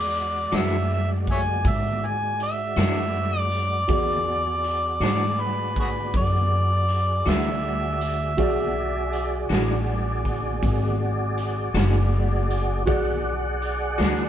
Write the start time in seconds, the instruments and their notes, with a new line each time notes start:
Already playing: upright bass E2, tonewheel organ G#3 F#4 D5, upright piano F#4 G#4 D5, harmonica D5
0.15 closed hi-hat
0.52 upright bass F#2, clean electric guitar E3 G#3 D4 F#4, harmonica E5, snare, closed hi-hat
0.94 harmonica E5
1.27 kick, closed hi-hat
1.32 harmonica C#5 E5 G#5
1.65 upright bass G#2, harmonica E5, kick, closed hi-hat
2.06 harmonica G#5
2.40 harmonica E5, closed hi-hat
2.76 upright bass F#2, clean electric guitar E3 G#3 D4 F#4, snare, closed hi-hat
3.39 harmonica D5
3.51 closed hi-hat
3.88 upright bass E2, upright piano F#4 G#4 D5, tonewheel organ F#4 G#4 D5, harmonica D5, kick, closed hi-hat
4.64 closed hi-hat
5.00 upright bass G#2, clean electric guitar E3 G#3 D4 F#4, snare, closed hi-hat
5.04 harmonica D5
5.41 harmonica B4
5.76 harmonica F#4 G#4 B4, kick, closed hi-hat
6.14 upright bass F#2, harmonica D5, kick, closed hi-hat
6.89 closed hi-hat
7.26 upright bass D2, clean electric guitar E3 G#3 D4 F#4, harmonica E5, snare, closed hi-hat
8.01 closed hi-hat
8.37 upright bass B1, upright piano F#4 G#4 D5, tonewheel organ F#4 G#4 D5, kick, closed hi-hat
9.13 closed hi-hat
9.49 upright bass A1, clean electric guitar E3 G#3 D4 F#4, snare, closed hi-hat
10.25 kick, closed hi-hat
10.63 upright bass G#1, kick, closed hi-hat
11.38 closed hi-hat
11.74 upright bass F#1, clean electric guitar E3 G#3 D4 F#4, snare, closed hi-hat
12.50 closed hi-hat
12.86 upright bass B1, upright piano F#4 G#4 D5, tonewheel organ G#4 D5 F#5, kick, closed hi-hat
13.62 closed hi-hat
13.98 upright bass D2, clean electric guitar E3 G#3 D4 F#4, snare, closed hi-hat